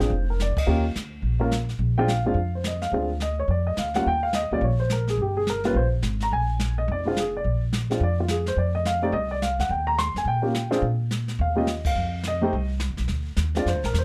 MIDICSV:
0, 0, Header, 1, 5, 480
1, 0, Start_track
1, 0, Tempo, 282353
1, 1134, Time_signature, 4, 2, 24, 8
1, 23878, End_track
2, 0, Start_track
2, 0, Title_t, "Grand piano"
2, 0, Program_c, 0, 0
2, 0, Note_on_c, 0, 72, 70
2, 1, Note_on_c, 0, 68, 66
2, 4, Note_on_c, 0, 65, 51
2, 162, Note_off_c, 0, 68, 0
2, 164, Note_off_c, 0, 65, 0
2, 437, Note_off_c, 0, 72, 0
2, 512, Note_on_c, 0, 70, 62
2, 671, Note_off_c, 0, 70, 0
2, 711, Note_on_c, 0, 74, 68
2, 971, Note_off_c, 0, 74, 0
2, 980, Note_on_c, 0, 75, 66
2, 1130, Note_on_c, 0, 58, 68
2, 1141, Note_on_c, 0, 61, 59
2, 1141, Note_on_c, 0, 65, 58
2, 1151, Note_on_c, 0, 67, 67
2, 1398, Note_off_c, 0, 58, 0
2, 1404, Note_off_c, 0, 61, 0
2, 1404, Note_off_c, 0, 65, 0
2, 1409, Note_off_c, 0, 67, 0
2, 1412, Note_off_c, 0, 75, 0
2, 2372, Note_on_c, 0, 58, 67
2, 2385, Note_on_c, 0, 61, 60
2, 2395, Note_on_c, 0, 65, 58
2, 2396, Note_on_c, 0, 70, 76
2, 2545, Note_off_c, 0, 58, 0
2, 2552, Note_off_c, 0, 61, 0
2, 2556, Note_off_c, 0, 65, 0
2, 2557, Note_off_c, 0, 70, 0
2, 3361, Note_on_c, 0, 79, 86
2, 3366, Note_on_c, 0, 56, 78
2, 3368, Note_on_c, 0, 60, 64
2, 3376, Note_on_c, 0, 62, 66
2, 3383, Note_on_c, 0, 65, 79
2, 3521, Note_off_c, 0, 56, 0
2, 3522, Note_off_c, 0, 60, 0
2, 3526, Note_off_c, 0, 62, 0
2, 3529, Note_off_c, 0, 65, 0
2, 3531, Note_off_c, 0, 79, 0
2, 3555, Note_on_c, 0, 77, 86
2, 3836, Note_on_c, 0, 56, 58
2, 3840, Note_on_c, 0, 60, 56
2, 3848, Note_on_c, 0, 65, 68
2, 3849, Note_on_c, 0, 62, 56
2, 3995, Note_off_c, 0, 56, 0
2, 3997, Note_off_c, 0, 60, 0
2, 4002, Note_off_c, 0, 62, 0
2, 4002, Note_off_c, 0, 65, 0
2, 4263, Note_off_c, 0, 77, 0
2, 4338, Note_on_c, 0, 72, 55
2, 4500, Note_off_c, 0, 72, 0
2, 4540, Note_on_c, 0, 75, 66
2, 4792, Note_on_c, 0, 77, 76
2, 4801, Note_off_c, 0, 75, 0
2, 4973, Note_on_c, 0, 56, 58
2, 4976, Note_on_c, 0, 60, 50
2, 4986, Note_on_c, 0, 62, 50
2, 4999, Note_on_c, 0, 65, 61
2, 5234, Note_off_c, 0, 77, 0
2, 5236, Note_off_c, 0, 56, 0
2, 5238, Note_off_c, 0, 60, 0
2, 5242, Note_off_c, 0, 62, 0
2, 5249, Note_off_c, 0, 65, 0
2, 5474, Note_on_c, 0, 75, 77
2, 5747, Note_off_c, 0, 75, 0
2, 5771, Note_on_c, 0, 73, 76
2, 5935, Note_off_c, 0, 73, 0
2, 5960, Note_on_c, 0, 74, 69
2, 6230, Note_off_c, 0, 74, 0
2, 6234, Note_on_c, 0, 75, 72
2, 6406, Note_off_c, 0, 75, 0
2, 6438, Note_on_c, 0, 77, 67
2, 6709, Note_off_c, 0, 77, 0
2, 6720, Note_on_c, 0, 58, 61
2, 6723, Note_on_c, 0, 55, 65
2, 6728, Note_on_c, 0, 78, 82
2, 6730, Note_on_c, 0, 61, 55
2, 6735, Note_on_c, 0, 65, 67
2, 6875, Note_off_c, 0, 58, 0
2, 6877, Note_off_c, 0, 55, 0
2, 6880, Note_off_c, 0, 61, 0
2, 6883, Note_off_c, 0, 65, 0
2, 6892, Note_off_c, 0, 78, 0
2, 6925, Note_on_c, 0, 79, 91
2, 7190, Note_on_c, 0, 77, 81
2, 7192, Note_off_c, 0, 79, 0
2, 7363, Note_off_c, 0, 77, 0
2, 7390, Note_on_c, 0, 75, 84
2, 7664, Note_off_c, 0, 75, 0
2, 7687, Note_on_c, 0, 55, 57
2, 7688, Note_on_c, 0, 58, 52
2, 7697, Note_on_c, 0, 65, 61
2, 7699, Note_on_c, 0, 61, 52
2, 7711, Note_on_c, 0, 74, 77
2, 7838, Note_off_c, 0, 55, 0
2, 7839, Note_off_c, 0, 58, 0
2, 7843, Note_off_c, 0, 65, 0
2, 7844, Note_off_c, 0, 61, 0
2, 7864, Note_off_c, 0, 74, 0
2, 7885, Note_on_c, 0, 73, 65
2, 8151, Note_off_c, 0, 73, 0
2, 8154, Note_on_c, 0, 72, 74
2, 8325, Note_off_c, 0, 72, 0
2, 8369, Note_on_c, 0, 70, 70
2, 8633, Note_off_c, 0, 70, 0
2, 8665, Note_on_c, 0, 68, 68
2, 8820, Note_off_c, 0, 68, 0
2, 8870, Note_on_c, 0, 67, 65
2, 9124, Note_off_c, 0, 67, 0
2, 9126, Note_on_c, 0, 68, 81
2, 9290, Note_off_c, 0, 68, 0
2, 9343, Note_on_c, 0, 70, 79
2, 9600, Note_off_c, 0, 70, 0
2, 9603, Note_on_c, 0, 55, 63
2, 9605, Note_on_c, 0, 58, 56
2, 9609, Note_on_c, 0, 65, 71
2, 9611, Note_on_c, 0, 61, 53
2, 9628, Note_on_c, 0, 71, 82
2, 9755, Note_off_c, 0, 55, 0
2, 9756, Note_off_c, 0, 58, 0
2, 9758, Note_off_c, 0, 65, 0
2, 9759, Note_off_c, 0, 61, 0
2, 9781, Note_off_c, 0, 71, 0
2, 9798, Note_on_c, 0, 72, 83
2, 9964, Note_off_c, 0, 72, 0
2, 10586, Note_on_c, 0, 82, 84
2, 10740, Note_off_c, 0, 82, 0
2, 10759, Note_on_c, 0, 80, 82
2, 11462, Note_off_c, 0, 80, 0
2, 11528, Note_on_c, 0, 75, 78
2, 11690, Note_off_c, 0, 75, 0
2, 11757, Note_on_c, 0, 74, 72
2, 11990, Note_on_c, 0, 64, 47
2, 12003, Note_on_c, 0, 56, 61
2, 12005, Note_off_c, 0, 64, 0
2, 12006, Note_off_c, 0, 74, 0
2, 12006, Note_on_c, 0, 62, 55
2, 12018, Note_on_c, 0, 60, 62
2, 12029, Note_on_c, 0, 65, 71
2, 12154, Note_off_c, 0, 56, 0
2, 12156, Note_off_c, 0, 62, 0
2, 12162, Note_off_c, 0, 60, 0
2, 12167, Note_off_c, 0, 65, 0
2, 12230, Note_on_c, 0, 68, 69
2, 12482, Note_off_c, 0, 68, 0
2, 12523, Note_on_c, 0, 74, 72
2, 12937, Note_off_c, 0, 74, 0
2, 13429, Note_on_c, 0, 56, 61
2, 13439, Note_on_c, 0, 60, 54
2, 13441, Note_on_c, 0, 62, 54
2, 13460, Note_on_c, 0, 65, 62
2, 13587, Note_off_c, 0, 56, 0
2, 13592, Note_off_c, 0, 60, 0
2, 13593, Note_off_c, 0, 62, 0
2, 13602, Note_off_c, 0, 65, 0
2, 13659, Note_on_c, 0, 74, 78
2, 13917, Note_off_c, 0, 74, 0
2, 13944, Note_on_c, 0, 65, 59
2, 14098, Note_off_c, 0, 65, 0
2, 14115, Note_on_c, 0, 68, 62
2, 14384, Note_off_c, 0, 68, 0
2, 14414, Note_on_c, 0, 72, 74
2, 14573, Note_off_c, 0, 72, 0
2, 14588, Note_on_c, 0, 74, 67
2, 14861, Note_off_c, 0, 74, 0
2, 14873, Note_on_c, 0, 75, 79
2, 15042, Note_off_c, 0, 75, 0
2, 15068, Note_on_c, 0, 77, 82
2, 15339, Note_on_c, 0, 60, 57
2, 15341, Note_off_c, 0, 77, 0
2, 15345, Note_on_c, 0, 57, 55
2, 15350, Note_on_c, 0, 74, 77
2, 15351, Note_on_c, 0, 63, 58
2, 15357, Note_on_c, 0, 67, 67
2, 15502, Note_off_c, 0, 60, 0
2, 15505, Note_off_c, 0, 57, 0
2, 15508, Note_off_c, 0, 63, 0
2, 15511, Note_off_c, 0, 67, 0
2, 15520, Note_off_c, 0, 74, 0
2, 15526, Note_on_c, 0, 75, 93
2, 15809, Note_off_c, 0, 75, 0
2, 15829, Note_on_c, 0, 74, 74
2, 16000, Note_off_c, 0, 74, 0
2, 16019, Note_on_c, 0, 77, 77
2, 16296, Note_off_c, 0, 77, 0
2, 16321, Note_on_c, 0, 78, 70
2, 16487, Note_off_c, 0, 78, 0
2, 16502, Note_on_c, 0, 79, 72
2, 16778, Note_off_c, 0, 79, 0
2, 16779, Note_on_c, 0, 82, 89
2, 16956, Note_off_c, 0, 82, 0
2, 16974, Note_on_c, 0, 84, 97
2, 17255, Note_off_c, 0, 84, 0
2, 17303, Note_on_c, 0, 80, 79
2, 17459, Note_off_c, 0, 80, 0
2, 17470, Note_on_c, 0, 79, 85
2, 17714, Note_on_c, 0, 58, 58
2, 17721, Note_on_c, 0, 61, 48
2, 17727, Note_on_c, 0, 65, 50
2, 17736, Note_on_c, 0, 67, 61
2, 17891, Note_off_c, 0, 58, 0
2, 17895, Note_off_c, 0, 61, 0
2, 17897, Note_off_c, 0, 65, 0
2, 17902, Note_off_c, 0, 67, 0
2, 18201, Note_on_c, 0, 62, 71
2, 18204, Note_on_c, 0, 60, 81
2, 18205, Note_on_c, 0, 65, 72
2, 18221, Note_on_c, 0, 68, 83
2, 18350, Note_off_c, 0, 79, 0
2, 18375, Note_off_c, 0, 62, 0
2, 18376, Note_off_c, 0, 60, 0
2, 18377, Note_off_c, 0, 65, 0
2, 18385, Note_off_c, 0, 68, 0
2, 19400, Note_on_c, 0, 77, 77
2, 19642, Note_on_c, 0, 58, 62
2, 19659, Note_on_c, 0, 61, 53
2, 19660, Note_on_c, 0, 65, 55
2, 19660, Note_on_c, 0, 67, 63
2, 19671, Note_off_c, 0, 77, 0
2, 19684, Note_on_c, 0, 75, 76
2, 19817, Note_off_c, 0, 58, 0
2, 19826, Note_off_c, 0, 61, 0
2, 19826, Note_off_c, 0, 65, 0
2, 19826, Note_off_c, 0, 67, 0
2, 20121, Note_off_c, 0, 75, 0
2, 20176, Note_on_c, 0, 77, 80
2, 20779, Note_off_c, 0, 77, 0
2, 20869, Note_on_c, 0, 75, 86
2, 21106, Note_on_c, 0, 57, 66
2, 21116, Note_on_c, 0, 60, 66
2, 21117, Note_on_c, 0, 63, 59
2, 21124, Note_on_c, 0, 67, 73
2, 21271, Note_off_c, 0, 57, 0
2, 21276, Note_off_c, 0, 60, 0
2, 21277, Note_off_c, 0, 63, 0
2, 21280, Note_off_c, 0, 67, 0
2, 21565, Note_off_c, 0, 75, 0
2, 23049, Note_on_c, 0, 56, 62
2, 23051, Note_on_c, 0, 60, 53
2, 23061, Note_on_c, 0, 62, 52
2, 23068, Note_on_c, 0, 65, 67
2, 23087, Note_on_c, 0, 74, 77
2, 23206, Note_off_c, 0, 56, 0
2, 23208, Note_off_c, 0, 60, 0
2, 23213, Note_off_c, 0, 62, 0
2, 23216, Note_off_c, 0, 65, 0
2, 23239, Note_off_c, 0, 74, 0
2, 23252, Note_on_c, 0, 72, 70
2, 23523, Note_off_c, 0, 72, 0
2, 23554, Note_on_c, 0, 70, 74
2, 23713, Note_off_c, 0, 70, 0
2, 23774, Note_on_c, 0, 72, 72
2, 23878, Note_off_c, 0, 72, 0
2, 23878, End_track
3, 0, Start_track
3, 0, Title_t, "Upright bass"
3, 0, Program_c, 1, 32
3, 171, Note_on_c, 1, 29, 88
3, 894, Note_off_c, 1, 29, 0
3, 1140, Note_on_c, 1, 39, 85
3, 1583, Note_off_c, 1, 39, 0
3, 1620, Note_on_c, 1, 38, 71
3, 2062, Note_off_c, 1, 38, 0
3, 2079, Note_on_c, 1, 34, 81
3, 2995, Note_off_c, 1, 34, 0
3, 3036, Note_on_c, 1, 34, 87
3, 3763, Note_off_c, 1, 34, 0
3, 3821, Note_on_c, 1, 32, 69
3, 3969, Note_off_c, 1, 32, 0
3, 3980, Note_on_c, 1, 41, 83
3, 4904, Note_off_c, 1, 41, 0
3, 4958, Note_on_c, 1, 38, 82
3, 5873, Note_off_c, 1, 38, 0
3, 5914, Note_on_c, 1, 41, 86
3, 6365, Note_off_c, 1, 41, 0
3, 6408, Note_on_c, 1, 38, 66
3, 6852, Note_off_c, 1, 38, 0
3, 6900, Note_on_c, 1, 39, 81
3, 7614, Note_off_c, 1, 39, 0
3, 7670, Note_on_c, 1, 38, 66
3, 7827, Note_off_c, 1, 38, 0
3, 7837, Note_on_c, 1, 34, 86
3, 8751, Note_off_c, 1, 34, 0
3, 8796, Note_on_c, 1, 31, 82
3, 9710, Note_off_c, 1, 31, 0
3, 9758, Note_on_c, 1, 34, 84
3, 10205, Note_off_c, 1, 34, 0
3, 10243, Note_on_c, 1, 32, 76
3, 10688, Note_off_c, 1, 32, 0
3, 10733, Note_on_c, 1, 34, 86
3, 11638, Note_off_c, 1, 34, 0
3, 11695, Note_on_c, 1, 29, 88
3, 12599, Note_off_c, 1, 29, 0
3, 12655, Note_on_c, 1, 34, 79
3, 13559, Note_off_c, 1, 34, 0
3, 13603, Note_on_c, 1, 41, 88
3, 14513, Note_off_c, 1, 41, 0
3, 14558, Note_on_c, 1, 41, 82
3, 15470, Note_off_c, 1, 41, 0
3, 15510, Note_on_c, 1, 36, 90
3, 16236, Note_off_c, 1, 36, 0
3, 16292, Note_on_c, 1, 38, 63
3, 16464, Note_off_c, 1, 38, 0
3, 16478, Note_on_c, 1, 39, 83
3, 17201, Note_off_c, 1, 39, 0
3, 17250, Note_on_c, 1, 40, 67
3, 17414, Note_off_c, 1, 40, 0
3, 17425, Note_on_c, 1, 46, 81
3, 18346, Note_off_c, 1, 46, 0
3, 18392, Note_on_c, 1, 46, 86
3, 19310, Note_off_c, 1, 46, 0
3, 19360, Note_on_c, 1, 39, 90
3, 20276, Note_off_c, 1, 39, 0
3, 20322, Note_on_c, 1, 41, 88
3, 21239, Note_off_c, 1, 41, 0
3, 21299, Note_on_c, 1, 36, 85
3, 21892, Note_off_c, 1, 36, 0
3, 21938, Note_on_c, 1, 39, 60
3, 22070, Note_off_c, 1, 39, 0
3, 22080, Note_on_c, 1, 35, 64
3, 22230, Note_off_c, 1, 35, 0
3, 22240, Note_on_c, 1, 38, 77
3, 22713, Note_off_c, 1, 38, 0
3, 22725, Note_on_c, 1, 39, 82
3, 23197, Note_off_c, 1, 39, 0
3, 23214, Note_on_c, 1, 41, 80
3, 23366, Note_off_c, 1, 41, 0
3, 23366, Note_on_c, 1, 38, 49
3, 23506, Note_off_c, 1, 38, 0
3, 23516, Note_on_c, 1, 34, 60
3, 23675, Note_off_c, 1, 34, 0
3, 23687, Note_on_c, 1, 40, 89
3, 23878, Note_off_c, 1, 40, 0
3, 23878, End_track
4, 0, Start_track
4, 0, Title_t, "Muted upright bass strokes"
4, 966, Note_on_c, 9, 29, 35
4, 1136, Note_off_c, 9, 29, 0
4, 23878, End_track
5, 0, Start_track
5, 0, Title_t, "Drums"
5, 4, Note_on_c, 9, 38, 37
5, 174, Note_off_c, 9, 38, 0
5, 191, Note_on_c, 9, 25, 47
5, 676, Note_on_c, 9, 38, 61
5, 679, Note_on_c, 9, 44, 57
5, 846, Note_off_c, 9, 38, 0
5, 849, Note_off_c, 9, 44, 0
5, 965, Note_on_c, 9, 36, 81
5, 984, Note_on_c, 9, 51, 68
5, 1135, Note_off_c, 9, 36, 0
5, 1154, Note_off_c, 9, 51, 0
5, 1158, Note_off_c, 9, 25, 0
5, 1158, Note_on_c, 9, 25, 51
5, 1625, Note_on_c, 9, 38, 58
5, 1628, Note_on_c, 9, 44, 51
5, 1795, Note_off_c, 9, 38, 0
5, 1798, Note_off_c, 9, 44, 0
5, 2106, Note_off_c, 9, 25, 0
5, 2106, Note_on_c, 9, 25, 44
5, 2576, Note_on_c, 9, 38, 55
5, 2579, Note_on_c, 9, 44, 50
5, 2746, Note_off_c, 9, 38, 0
5, 2749, Note_off_c, 9, 44, 0
5, 2870, Note_on_c, 9, 38, 33
5, 3040, Note_off_c, 9, 38, 0
5, 3055, Note_off_c, 9, 25, 0
5, 3055, Note_on_c, 9, 25, 45
5, 3540, Note_on_c, 9, 38, 55
5, 3543, Note_on_c, 9, 44, 47
5, 3710, Note_off_c, 9, 38, 0
5, 3713, Note_off_c, 9, 44, 0
5, 4007, Note_off_c, 9, 25, 0
5, 4007, Note_on_c, 9, 25, 45
5, 4489, Note_on_c, 9, 38, 60
5, 4493, Note_on_c, 9, 44, 66
5, 4659, Note_off_c, 9, 38, 0
5, 4663, Note_off_c, 9, 44, 0
5, 4787, Note_on_c, 9, 38, 37
5, 4957, Note_off_c, 9, 38, 0
5, 4970, Note_off_c, 9, 25, 0
5, 4970, Note_on_c, 9, 25, 43
5, 5443, Note_on_c, 9, 38, 54
5, 5446, Note_on_c, 9, 44, 51
5, 5613, Note_off_c, 9, 38, 0
5, 5616, Note_off_c, 9, 44, 0
5, 5918, Note_off_c, 9, 25, 0
5, 5918, Note_on_c, 9, 25, 49
5, 6407, Note_on_c, 9, 38, 62
5, 6411, Note_on_c, 9, 44, 56
5, 6577, Note_off_c, 9, 38, 0
5, 6581, Note_off_c, 9, 44, 0
5, 6700, Note_on_c, 9, 38, 36
5, 6870, Note_off_c, 9, 38, 0
5, 6887, Note_off_c, 9, 25, 0
5, 6887, Note_on_c, 9, 25, 47
5, 7359, Note_on_c, 9, 38, 59
5, 7362, Note_on_c, 9, 44, 54
5, 7529, Note_off_c, 9, 38, 0
5, 7532, Note_off_c, 9, 44, 0
5, 7851, Note_off_c, 9, 25, 0
5, 7851, Note_on_c, 9, 25, 54
5, 8324, Note_on_c, 9, 38, 58
5, 8327, Note_on_c, 9, 44, 56
5, 8494, Note_off_c, 9, 38, 0
5, 8497, Note_off_c, 9, 44, 0
5, 8626, Note_on_c, 9, 38, 36
5, 8796, Note_off_c, 9, 38, 0
5, 8805, Note_off_c, 9, 25, 0
5, 8805, Note_on_c, 9, 25, 47
5, 9295, Note_on_c, 9, 38, 57
5, 9298, Note_on_c, 9, 44, 49
5, 9465, Note_off_c, 9, 38, 0
5, 9468, Note_off_c, 9, 44, 0
5, 9582, Note_on_c, 9, 38, 35
5, 9752, Note_off_c, 9, 38, 0
5, 9760, Note_off_c, 9, 25, 0
5, 9760, Note_on_c, 9, 25, 42
5, 10243, Note_on_c, 9, 38, 61
5, 10246, Note_on_c, 9, 44, 57
5, 10413, Note_off_c, 9, 38, 0
5, 10416, Note_off_c, 9, 44, 0
5, 10546, Note_on_c, 9, 38, 39
5, 10716, Note_off_c, 9, 38, 0
5, 10721, Note_off_c, 9, 25, 0
5, 10721, Note_on_c, 9, 25, 49
5, 11211, Note_on_c, 9, 38, 59
5, 11215, Note_on_c, 9, 44, 48
5, 11381, Note_off_c, 9, 38, 0
5, 11385, Note_off_c, 9, 44, 0
5, 11691, Note_off_c, 9, 25, 0
5, 11691, Note_on_c, 9, 25, 42
5, 12180, Note_on_c, 9, 38, 60
5, 12183, Note_on_c, 9, 44, 61
5, 12350, Note_off_c, 9, 38, 0
5, 12353, Note_off_c, 9, 44, 0
5, 12652, Note_off_c, 9, 25, 0
5, 12652, Note_on_c, 9, 25, 41
5, 13135, Note_on_c, 9, 38, 60
5, 13139, Note_on_c, 9, 44, 47
5, 13305, Note_off_c, 9, 38, 0
5, 13309, Note_off_c, 9, 44, 0
5, 13441, Note_on_c, 9, 38, 36
5, 13611, Note_off_c, 9, 38, 0
5, 13612, Note_off_c, 9, 25, 0
5, 13612, Note_on_c, 9, 25, 47
5, 14081, Note_on_c, 9, 38, 63
5, 14085, Note_on_c, 9, 44, 56
5, 14251, Note_off_c, 9, 38, 0
5, 14255, Note_off_c, 9, 44, 0
5, 14386, Note_on_c, 9, 38, 41
5, 14556, Note_off_c, 9, 38, 0
5, 14571, Note_off_c, 9, 25, 0
5, 14571, Note_on_c, 9, 25, 46
5, 15052, Note_on_c, 9, 38, 55
5, 15056, Note_on_c, 9, 44, 55
5, 15222, Note_off_c, 9, 38, 0
5, 15226, Note_off_c, 9, 44, 0
5, 15531, Note_off_c, 9, 25, 0
5, 15531, Note_on_c, 9, 25, 43
5, 16013, Note_on_c, 9, 38, 59
5, 16017, Note_on_c, 9, 44, 60
5, 16183, Note_off_c, 9, 38, 0
5, 16187, Note_off_c, 9, 44, 0
5, 16312, Note_on_c, 9, 38, 38
5, 16482, Note_off_c, 9, 38, 0
5, 16500, Note_off_c, 9, 25, 0
5, 16500, Note_on_c, 9, 25, 45
5, 16974, Note_on_c, 9, 38, 61
5, 16978, Note_on_c, 9, 44, 57
5, 17144, Note_off_c, 9, 38, 0
5, 17148, Note_off_c, 9, 44, 0
5, 17273, Note_on_c, 9, 38, 37
5, 17443, Note_off_c, 9, 38, 0
5, 17458, Note_off_c, 9, 25, 0
5, 17458, Note_on_c, 9, 25, 41
5, 17927, Note_on_c, 9, 38, 65
5, 17931, Note_on_c, 9, 44, 65
5, 18097, Note_off_c, 9, 38, 0
5, 18101, Note_off_c, 9, 44, 0
5, 18225, Note_on_c, 9, 38, 38
5, 18395, Note_off_c, 9, 38, 0
5, 18403, Note_off_c, 9, 25, 0
5, 18403, Note_on_c, 9, 25, 43
5, 18883, Note_on_c, 9, 38, 58
5, 18887, Note_on_c, 9, 44, 54
5, 19053, Note_off_c, 9, 38, 0
5, 19057, Note_off_c, 9, 44, 0
5, 19177, Note_on_c, 9, 38, 41
5, 19347, Note_off_c, 9, 38, 0
5, 19357, Note_off_c, 9, 25, 0
5, 19357, Note_on_c, 9, 25, 47
5, 19838, Note_on_c, 9, 38, 61
5, 19842, Note_on_c, 9, 44, 51
5, 20008, Note_off_c, 9, 38, 0
5, 20012, Note_off_c, 9, 44, 0
5, 20142, Note_on_c, 9, 36, 80
5, 20154, Note_on_c, 9, 51, 74
5, 20312, Note_off_c, 9, 36, 0
5, 20322, Note_off_c, 9, 25, 0
5, 20322, Note_on_c, 9, 25, 44
5, 20324, Note_off_c, 9, 51, 0
5, 20798, Note_on_c, 9, 38, 56
5, 20801, Note_on_c, 9, 44, 59
5, 20968, Note_off_c, 9, 38, 0
5, 20971, Note_off_c, 9, 44, 0
5, 21289, Note_off_c, 9, 25, 0
5, 21289, Note_on_c, 9, 25, 52
5, 21756, Note_on_c, 9, 38, 65
5, 21759, Note_on_c, 9, 44, 61
5, 21926, Note_off_c, 9, 38, 0
5, 21929, Note_off_c, 9, 44, 0
5, 22053, Note_on_c, 9, 38, 36
5, 22223, Note_off_c, 9, 38, 0
5, 22231, Note_off_c, 9, 25, 0
5, 22231, Note_on_c, 9, 25, 49
5, 22231, Note_on_c, 9, 38, 40
5, 22401, Note_off_c, 9, 38, 0
5, 22721, Note_on_c, 9, 38, 57
5, 22724, Note_on_c, 9, 44, 47
5, 22891, Note_off_c, 9, 38, 0
5, 22894, Note_off_c, 9, 44, 0
5, 23033, Note_on_c, 9, 38, 40
5, 23203, Note_off_c, 9, 38, 0
5, 23226, Note_off_c, 9, 25, 0
5, 23226, Note_on_c, 9, 25, 45
5, 23226, Note_on_c, 9, 38, 37
5, 23396, Note_off_c, 9, 38, 0
5, 23523, Note_on_c, 9, 38, 47
5, 23693, Note_off_c, 9, 38, 0
5, 23703, Note_on_c, 9, 38, 60
5, 23706, Note_on_c, 9, 44, 52
5, 23873, Note_off_c, 9, 38, 0
5, 23876, Note_off_c, 9, 44, 0
5, 23878, Note_off_c, 9, 25, 0
5, 23878, End_track
0, 0, End_of_file